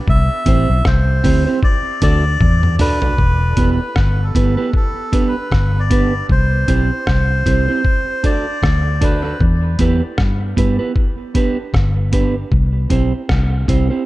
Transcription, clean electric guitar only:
0.46 0.67 C4 medium
0.46 0.68 E4 medium
0.46 0.68 G4 medium
0.46 0.68 C5 medium
1.24 1.45 C4 medium
1.24 1.45 E4 medium
1.24 1.46 G4 medium
1.24 1.45 C5 medium
1.46 1.59 C4 medium
1.46 1.59 E4 medium
1.46 1.59 G4 medium
1.46 1.59 C5 medium
2.02 2.23 D4 medium
2.02 2.23 F#4 medium
2.02 2.24 A4 loud
2.02 2.24 D5 loud
2.79 3.01 D4 medium
2.79 3.01 F#4 medium
2.79 3.01 A4 medium
2.79 3.01 D5 medium
3.02 3.15 D4 soft
3.02 3.15 F#4 medium
3.02 3.14 A4 medium
3.02 3.14 D5 medium
3.57 3.78 B3 medium
3.57 3.79 E4 medium
3.57 3.79 G4 medium
3.57 3.79 B4 medium
4.35 4.56 B3 medium
4.35 4.56 E4 medium
4.35 4.57 G4 medium
4.35 4.56 B4 medium
4.57 4.70 B3 medium
4.57 4.70 E4 medium
4.57 4.70 G4 medium
4.57 4.69 B4 medium
5.12 5.34 B3 medium
5.12 5.34 D4 medium
5.12 5.34 G4 medium
5.12 5.35 B4 medium
5.90 6.12 B3 medium
5.90 6.12 D4 medium
5.90 6.12 G4 medium
5.90 6.13 B4 medium
6.68 6.89 C4 medium
6.68 6.90 E4 medium
6.68 6.90 G4 medium
6.68 6.90 C5 medium
7.46 7.67 C4 medium
7.46 7.67 E4 medium
7.46 7.68 G4 medium
7.46 7.67 C5 medium
7.68 7.81 C4 medium
7.68 7.81 E4 medium
7.68 7.81 G4 medium
7.68 7.80 C5 medium
8.23 8.45 D4 medium
8.23 8.45 F#4 medium
8.23 8.46 A4 medium
8.23 8.46 D5 medium
9.01 9.23 D4 medium
9.01 9.23 F#4 medium
9.01 9.23 A4 medium
9.01 9.23 D5 loud
9.24 9.37 D4 soft
9.24 9.37 F#4 medium
9.24 9.36 A4 medium
9.24 9.36 D5 medium
9.79 10.00 B3 medium
9.79 10.01 E4 medium
9.79 10.01 G4 medium
9.79 10.01 B4 medium
10.56 10.78 B3 medium
10.56 10.79 E4 medium
10.56 10.79 G4 medium
10.56 10.78 B4 medium
10.79 10.92 B3 soft
10.79 10.92 E4 medium
10.79 10.92 G4 medium
10.79 10.91 B4 medium
11.34 11.56 B3 medium
11.34 11.56 D4 medium
11.34 11.57 G4 medium
11.34 11.57 B4 medium
12.12 12.34 B3 medium
12.12 12.34 D4 medium
12.12 12.34 G4 medium
12.12 12.34 B4 medium
12.90 13.11 C4 medium
12.90 13.12 E4 medium
12.90 13.12 G4 medium
12.90 13.12 C5 medium
13.68 13.89 C4 medium
13.68 13.89 E4 medium
13.68 13.90 G4 medium
13.68 13.89 C5 medium
13.90 14.03 C4 medium
13.90 14.03 E4 medium
13.90 14.03 G4 medium
13.90 14.03 C5 medium

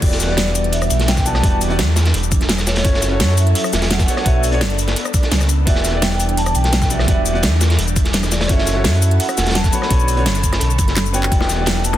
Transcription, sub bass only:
0.02 0.89 E1 loud
0.91 1.42 B1 loud
1.44 1.80 E1 loud
1.79 2.13 E2 loud
2.14 2.83 E1 medium
2.85 3.21 F#1 loud
3.20 3.54 F#2 loud
3.73 4.07 E1 medium
4.26 4.63 B1 loud
4.61 4.95 F#1 medium
5.32 5.66 C#2 medium
5.67 6.54 E1 loud
6.55 7.07 B1 loud
7.08 7.45 E1 loud
7.43 7.77 E2 loud
7.79 8.48 E1 medium
8.49 8.86 F#1 loud
8.85 9.19 F#2 loud
9.38 9.72 E1 medium
9.91 10.27 B1 loud
10.26 10.60 F#1 loud
10.61 10.80 B1 medium
10.79 11.30 F#1 loud
11.32 11.97 E1 loud

